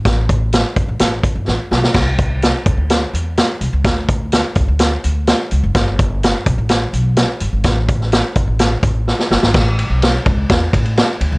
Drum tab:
CC |----------------|x---------------|----------------|----------------|
RD |----------------|----------------|----------------|----------------|
HH |x-x-x-x-x-x-----|--x-x-x-x-x-x-x-|x-x-x-x-x-x-x-x-|x-x-x-x-x-x-x-x-|
SD |o---o---o---o-oo|o---o---o---o---|o---o---o---o---|o---o---o---o---|
BD |o-o---o---o-----|o-o---o---------|o-o---o---------|o-o---o---------|

CC |----------------|x---------------|
RD |----------------|--x-x-x-x-xxx-x-|
HH |x-x-x-x-x-x-----|----------------|
SD |o--oo---o---oooo|o---o---o---o---|
BD |o-o---o---o-----|o-----o-o-o-----|